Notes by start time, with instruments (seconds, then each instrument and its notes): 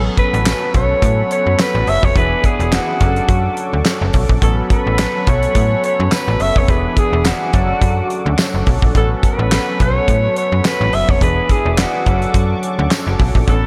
Already playing: analog polysynth F#3 B3 C#4 A4, analog synth pad A4 F#5 B5 C#6
0.18 alto saxophone B4, kick, closed hi-hat
0.34 fm bass A1, closed hi-hat
0.45 snare, clap, closed hi-hat, tambourine
0.74 fm bass B1, alto saxophone C#5, kick, closed hi-hat
1.02 fm bass A2, kick, closed hi-hat
1.31 alto saxophone C#5, closed hi-hat
1.46 fm bass F#2
1.59 alto saxophone B4, snare, clap, closed hi-hat, tambourine
1.75 fm bass A1
1.87 fm bass F#1, alto saxophone E5, open hi-hat
2.03 fm bass F1, alto saxophone C#5, kick
2.15 fm bass E1, analog polysynth E3 B3 D4 G#4, analog synth pad G#4 E5 D6, alto saxophone B4, kick, closed hi-hat
2.44 alto saxophone G#4, kick, closed hi-hat
2.60 fm bass E1, closed hi-hat
2.72 alto saxophone F#4, snare, clap, closed hi-hat, tambourine
3.00 fm bass F#1, analog polysynth F#3 C#4 D4 A4, analog synth pad A4 F#5 C#6, kick, closed hi-hat
3.16 closed hi-hat
3.29 fm bass F#2, kick, closed hi-hat
3.57 closed hi-hat
3.73 fm bass D2
3.85 snare, clap, closed hi-hat, tambourine
4.01 fm bass F#1
4.13 fm bass B1, kick, open hi-hat
4.29 fm bass A#1, kick
4.41 fm bass A1, analog polysynth F#3 B3 C#4 A4, alto saxophone A4, analog synth pad B5 C#6, kick, closed hi-hat
4.70 alto saxophone B4, kick, closed hi-hat
4.87 fm bass A1
4.98 snare, clap, closed hi-hat, tambourine
5.27 fm bass B1, alto saxophone C#5, kick, closed hi-hat
5.43 closed hi-hat
5.55 fm bass A2, kick, closed hi-hat
5.84 alto saxophone C#5, closed hi-hat
6.00 fm bass F#2
6.12 alto saxophone B4, snare, clap, closed hi-hat, tambourine
6.28 fm bass A1
6.40 fm bass F#1, alto saxophone E5, open hi-hat
6.56 fm bass F1, alto saxophone C#5, kick
6.68 fm bass E1, analog polysynth E3 B3 D4 G#4, analog synth pad G#4 E5 D6, alto saxophone B4, kick, closed hi-hat
6.97 alto saxophone G#4, kick, closed hi-hat
7.13 fm bass E1
7.24 alto saxophone F#4, snare, clap, closed hi-hat, tambourine
7.53 fm bass F#1, analog polysynth F#3 C#4 D4 A4, analog synth pad A4 F#5 C#6, kick, closed hi-hat
7.82 fm bass F#2, kick, closed hi-hat
8.10 closed hi-hat
8.26 fm bass D2
8.38 snare, clap, closed hi-hat, tambourine
8.54 fm bass F#1
8.67 fm bass B1, kick, open hi-hat
8.82 fm bass A#1, kick
8.94 fm bass A1, analog polysynth F#3 B3 C#4 A4, alto saxophone A4, analog synth pad B5 C#6, kick, closed hi-hat
9.23 alto saxophone B4, kick, closed hi-hat
9.39 fm bass A1
9.51 snare, clap, closed hi-hat, tambourine
9.80 fm bass B1, alto saxophone C#5, kick, closed hi-hat
10.08 fm bass A2, kick, closed hi-hat
10.36 alto saxophone C#5, closed hi-hat
10.52 fm bass F#2
10.65 alto saxophone B4, snare, clap, closed hi-hat, tambourine
10.81 fm bass A1
10.93 fm bass F#1, alto saxophone E5, open hi-hat
11.09 fm bass F1, alto saxophone C#5, kick
11.21 fm bass E1, analog polysynth E3 B3 D4 G#4, analog synth pad G#4 E5 D6, alto saxophone B4, kick, closed hi-hat
11.49 alto saxophone G#4, kick, closed hi-hat
11.65 fm bass E1
11.73 alto saxophone G#4
11.77 alto saxophone F#4, snare, clap, closed hi-hat, tambourine
12.06 fm bass F#1, analog polysynth F#3 C#4 D4 A4, analog synth pad A4 F#5 C#6, kick, closed hi-hat
12.22 closed hi-hat
12.34 fm bass F#2, kick, closed hi-hat
12.63 closed hi-hat
12.79 fm bass D2
12.91 snare, clap, closed hi-hat, tambourine
13.07 fm bass F#1
13.19 fm bass B1, kick, open hi-hat
13.35 fm bass A#1, kick
13.47 fm bass A1, analog polysynth F#3 B3 C#4 A4, analog synth pad A4 B5 C#6, alto saxophone A4, kick, closed hi-hat